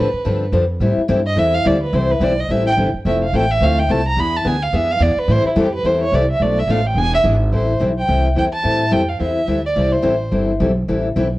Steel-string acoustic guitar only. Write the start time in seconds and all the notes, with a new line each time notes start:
0.25 D3 F3 C4 D4 A4
0.53 D3 F3 C4 D4 A4
0.81 E3 G3 C4 E4 A4
1.08 E3 G3 C4 E4 A4
1.35 E3 G3 C4 E4 A4
1.65 E3 G3 C4 E4 A4
1.93 E3 G3 C4 E4 A4
2.21 E3 G3 C4 E4 A4
2.50 E3 G3 C4 E4 A4
2.77 E3 G3 C4 E4 A4
3.05 F3 A3 C4 E4 A4
3.33 F3 A3 C4 E4 A4
3.61 F3 A3 C4 E4 A4
3.89 F3 A3 C4 E4 A4
4.17 E3 B3 D4 G#4
4.44 E3 B3 D4 G#4
4.73 E3 B3 D4 G#4
5.00 E3 B3 D4 G#4
5.28 E3 G3 C4 E4 A4
5.56 E3 G3 C4 E4 A4
5.85 E3 G3 C4 E4 A4
6.13 E3 G3 C4 E4 A4
6.41 B2 F3 A3 D4 A4
6.69 B2 F3 A3 D4 A4
6.97 E3 B3 D4 G#4
7.24 E3 B3 D4 G#4
7.52 E3 G3 C4 E4 A4
7.79 E3 G3 C4 E4 A4
8.07 E3 G3 C4 E4 A4
8.35 E3 G3 C4 E4 A4
8.63 E3 G3 C4 E4 A4
8.91 E3 G3 C4 E4 A4
9.19 E3 G3 C4 E4 A4
9.47 E3 G3 C4 E4 A4
9.76 E3 G3 C4 E4 A4
10.03 E3 G3 C4 E4 A4
10.31 E3 G3 C4 E4 A4
10.60 E3 G3 C4 E4 A4
10.88 E3 G3 C4 E4 A4
11.16 E3 G3 C4 E4 A4